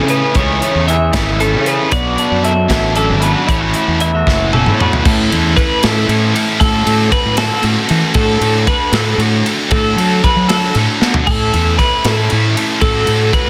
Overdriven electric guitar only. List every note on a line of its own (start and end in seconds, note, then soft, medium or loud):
0.09 0.33 C#3 medium
0.09 0.34 E3 medium
0.09 0.34 A3 medium
0.09 0.35 E4 medium
0.34 0.59 C#3 medium
0.34 0.59 E3 medium
0.34 0.59 A3 medium
0.34 0.59 E4 medium
0.60 0.95 C#3 medium
0.60 0.95 E3 medium
0.60 0.95 A3 medium
0.60 0.95 E4 medium
1.13 1.38 C#3 medium
1.13 1.38 E3 medium
1.13 1.39 A3 medium
1.13 1.39 E4 medium
1.39 1.65 C#3 medium
1.39 1.64 E3 medium
1.39 1.64 A3 medium
1.39 1.64 E4 medium
1.65 1.91 C#3 medium
1.65 1.92 E3 medium
1.65 1.92 A3 medium
1.65 1.92 E4 medium
1.91 2.17 B2 medium
1.91 2.17 F#3 medium
1.91 2.16 B3 medium
1.91 2.15 D4 medium
2.16 2.52 B2 medium
2.16 2.52 F#3 medium
2.16 2.52 B3 medium
2.16 2.51 D4 medium
2.68 2.93 B2 medium
2.68 2.94 F#3 medium
2.68 2.95 B3 medium
2.68 2.95 D4 medium
2.94 3.22 B2 medium
2.94 3.21 F#3 medium
2.94 3.21 B3 medium
2.94 3.20 D4 medium
3.21 3.48 B2 medium
3.21 3.49 F#3 medium
3.21 3.49 B3 medium
3.21 3.48 D4 medium
3.49 3.75 E3 medium
3.49 3.75 A3 medium
3.49 3.75 C#4 medium
3.49 3.74 E4 medium
3.75 4.10 E3 medium
3.75 4.09 A3 medium
3.75 4.09 C#4 medium
3.75 4.09 E4 medium
4.28 4.51 E3 medium
4.28 4.52 A3 medium
4.28 4.52 C#4 medium
4.28 4.53 E4 medium
4.53 4.78 E3 medium
4.53 4.77 A3 medium
4.53 4.77 C#4 medium
4.53 4.76 E4 medium
4.77 5.04 E3 medium
4.77 5.03 A3 medium
4.77 5.04 C#4 medium
4.77 5.04 E4 medium
5.05 5.55 A3 loud
5.05 5.32 C#4 loud
5.05 5.31 E4 loud
5.05 5.30 A4 loud
5.30 5.55 C#4 medium
5.30 5.56 E4 medium
5.30 5.57 A4 medium
5.55 6.07 A3 medium
5.55 5.85 C#4 medium
5.55 5.83 E4 medium
5.55 5.83 A4 medium
5.84 6.09 C#4 medium
5.84 6.08 E4 medium
5.84 6.10 A4 medium
6.08 6.60 A3 medium
6.08 6.36 C#4 medium
6.08 6.35 E4 medium
6.08 6.34 A4 medium
6.35 6.60 C#4 medium
6.35 6.60 E4 medium
6.35 6.62 A4 medium
6.60 7.10 A3 loud
6.60 6.89 C#4 loud
6.60 6.88 F#4 loud
6.60 6.86 A4 loud
6.87 7.11 C#4 medium
6.87 7.12 F#4 medium
6.87 7.13 A4 medium
7.10 7.62 A3 medium
7.10 7.40 C#4 medium
7.10 7.38 F#4 medium
7.10 7.38 A4 medium
7.38 7.63 C#4 medium
7.38 7.64 F#4 medium
7.38 7.63 A4 medium
7.62 8.16 A3 medium
7.62 7.91 C#4 medium
7.62 7.90 F#4 medium
7.62 7.89 A4 medium
7.89 8.16 C#4 medium
7.89 8.17 F#4 medium
7.89 8.18 A4 medium
8.16 8.68 A3 medium
8.16 8.45 D4 loud
8.16 8.44 F#4 loud
8.16 8.43 A4 medium
8.43 8.68 D4 medium
8.43 8.69 F#4 medium
8.43 8.69 A4 medium
8.68 9.20 A3 medium
8.68 8.95 D4 medium
8.68 8.94 F#4 medium
8.68 8.93 A4 medium
8.94 9.19 D4 medium
8.94 9.20 F#4 medium
8.94 9.22 A4 medium
9.20 9.73 A3 medium
9.20 9.48 D4 medium
9.20 9.48 F#4 loud
9.20 9.47 A4 medium
9.48 9.73 D4 medium
9.48 9.73 F#4 medium
9.48 9.75 A4 medium
9.74 10.26 A3 loud
9.74 10.00 D4 loud
9.74 9.99 F#4 loud
9.74 10.00 A4 loud
10.00 10.26 D4 medium
10.00 10.27 F#4 medium
10.00 10.28 A4 medium
10.27 10.75 A3 medium
10.27 10.52 D4 medium
10.27 10.51 F#4 medium
10.27 10.50 A4 medium
10.51 10.76 D4 medium
10.51 10.76 F#4 medium
10.51 10.78 A4 medium
10.76 11.27 A3 medium
10.76 11.03 D4 medium
10.76 11.02 F#4 medium
10.76 11.01 A4 medium
11.01 11.27 D4 medium
11.01 11.26 F#4 medium
11.01 11.29 A4 medium
11.28 11.79 A3 medium
11.28 11.58 C#4 loud
11.28 11.57 E4 loud
11.28 11.55 A4 loud
11.55 11.80 C#4 medium
11.55 11.81 E4 medium
11.55 11.81 A4 medium
11.80 12.31 A3 medium
11.80 12.07 C#4 medium
11.80 12.06 E4 medium
11.80 12.05 A4 medium
12.06 12.31 C#4 medium
12.06 12.33 E4 medium
12.06 12.32 A4 medium
12.32 12.81 A3 medium
12.32 12.58 C#4 medium
12.32 12.58 E4 medium
12.32 12.56 A4 medium
12.57 12.82 C#4 medium
12.57 12.84 E4 medium
12.57 12.81 A4 medium
12.83 13.32 A3 loud
12.83 13.09 C#4 loud
12.83 13.07 F#4 loud
12.83 13.07 A4 loud
13.08 13.32 C#4 medium
13.08 13.34 F#4 medium
13.08 13.33 A4 medium
13.33 13.50 A3 medium
13.33 13.50 C#4 medium
13.33 13.50 F#4 medium
13.33 13.50 A4 medium